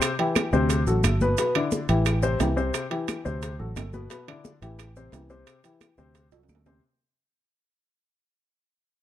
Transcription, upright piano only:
0.00 0.12 C3 medium
0.00 0.13 C4 medium
0.00 0.13 C5 medium
0.19 0.47 E3 medium
0.19 0.47 E4 medium
0.19 0.47 G4 medium
0.53 0.81 C3 medium
0.53 0.81 C4 medium
0.53 0.81 C5 medium
0.87 1.15 F#3 medium
0.87 1.15 F#4 medium
0.87 1.15 A4 medium
1.22 1.35 B2 medium
1.22 1.36 B3 medium
1.22 1.36 B4 medium
1.38 1.52 B2 medium
1.38 1.52 B3 medium
1.38 1.53 B4 medium
1.55 1.83 D3 medium
1.55 1.83 D4 medium
1.55 1.83 E4 medium
1.89 2.17 E3 medium
1.89 2.17 E4 medium
1.89 2.17 G4 medium
2.22 2.37 C3 medium
2.22 2.37 C4 medium
2.22 2.37 C5 medium
2.40 2.54 E3 medium
2.40 2.54 E4 medium
2.40 2.54 G4 medium
2.56 2.85 C3 medium
2.56 2.85 C4 medium
2.56 2.85 C5 medium
2.91 3.19 E3 medium
2.91 3.19 E4 medium
2.91 3.19 G4 medium
3.25 3.53 C3 medium
3.25 3.53 C4 medium
3.25 3.53 C5 medium
3.59 3.87 F#3 medium
3.59 3.87 F#4 medium
3.59 3.88 A4 medium
3.93 4.07 B2 medium
3.93 4.08 B3 medium
3.93 4.08 B4 medium
4.11 4.25 B2 medium
4.11 4.25 B3 medium
4.11 4.25 B4 medium
4.28 4.56 D3 medium
4.28 4.56 D4 medium
4.28 4.56 E4 medium
4.62 4.90 E3 medium
4.62 4.90 E4 medium
4.62 4.90 G4 medium
4.96 5.10 C3 medium
4.96 5.10 C4 medium
4.96 5.10 C5 medium
5.13 5.27 E3 medium
5.13 5.27 E4 medium
5.13 5.27 G4 medium
5.30 5.58 C3 medium
5.30 5.58 C4 medium
5.30 5.58 C5 medium
5.64 5.92 E3 medium
5.64 5.92 E4 medium
5.64 5.92 G4 medium
5.98 6.26 C3 medium
5.98 6.26 C4 medium
5.98 6.26 C5 medium
6.32 6.60 F#3 medium
6.32 6.60 F#4 medium
6.32 6.60 A4 medium
6.66 6.80 C3 medium
6.66 6.80 C4 medium
6.66 6.80 C5 medium

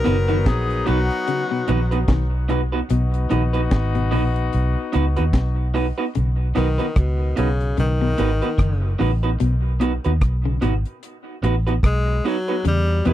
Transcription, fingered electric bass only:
0.07 0.47 F#1 loud
0.47 0.82 A#1 medium
0.88 1.09 B1 medium
1.69 2.04 A#1 loud
2.09 2.81 B1 medium
2.91 3.26 B1 loud
3.32 3.67 A#1 medium
3.72 4.13 G#1 loud
4.13 4.48 A#1 medium
4.54 4.75 B1 medium
4.95 5.15 C#2 loud
5.19 5.33 D#2 medium
5.34 5.91 B1 loud
6.17 6.52 B1 medium
6.57 6.77 B1 loud
6.97 7.32 C#2 medium
7.38 7.74 B1 medium
7.78 8.14 B1 loud
8.19 8.40 G#1 medium
8.59 8.95 F#1 medium
9.01 9.36 A1 loud
9.41 9.98 B1 medium
10.06 10.20 D#2 medium
10.22 10.58 B1 medium
10.62 10.83 G#1 medium
11.43 11.79 A1 loud
11.84 12.19 B1 medium
12.65 13.01 E2 loud
13.06 13.13 E2 medium

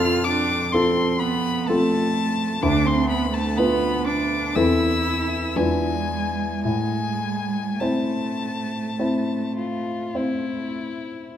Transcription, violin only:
0.00 0.26 F6 loud
0.24 0.74 D6 medium
0.72 1.21 C6 medium
1.19 1.69 B5 medium
1.68 2.64 A5 medium
2.62 2.88 D6 medium
2.86 3.09 C6 medium
3.10 3.35 B5 medium
3.34 3.59 A5 medium
3.57 4.06 B5 medium
4.07 4.57 D6 medium
4.55 5.58 E6 medium
5.56 6.64 G#5 medium
6.64 7.82 G#5 medium
7.80 9.57 A5 medium
9.58 10.17 F4 soft
10.16 11.37 E4 soft

